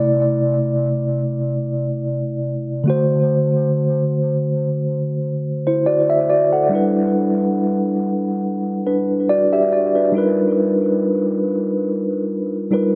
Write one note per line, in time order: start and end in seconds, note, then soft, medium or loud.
0.00 2.81 C3 medium
0.00 2.82 A3 medium
0.00 2.83 E4 medium
0.00 2.84 D5 medium
2.84 6.24 D3 medium
2.84 6.25 A3 medium
2.84 5.40 F#4 medium
2.90 5.41 C5 medium
5.67 5.86 E4 medium
5.67 5.85 C5 medium
5.86 6.09 F#4 medium
5.86 6.08 D5 medium
6.10 6.28 E5 medium
6.30 6.51 F#4 medium
6.30 6.51 D5 medium
6.53 6.93 A4 soft
6.53 6.93 F#5 medium
6.69 10.09 G3 medium
6.69 8.82 D4 medium
6.69 8.83 E4 medium
6.75 8.84 B4 medium
8.87 9.27 D4 medium
8.87 9.27 B4 medium
9.29 9.51 F#4 medium
9.29 9.51 D5 medium
9.53 9.71 G4 medium
9.53 9.71 E5 medium
9.72 9.94 F#4 medium
9.72 9.94 D5 medium
9.95 10.36 D4 soft
9.95 10.17 B4 medium
10.12 12.67 G3 medium
10.12 12.67 D#4 medium
10.12 12.68 F4 medium
10.17 12.69 A#4 medium
10.17 12.69 B4 medium
12.71 12.95 G3 medium
12.71 12.95 D#4 medium
12.71 12.95 F4 medium
12.71 12.95 A#4 medium
12.71 12.95 B4 medium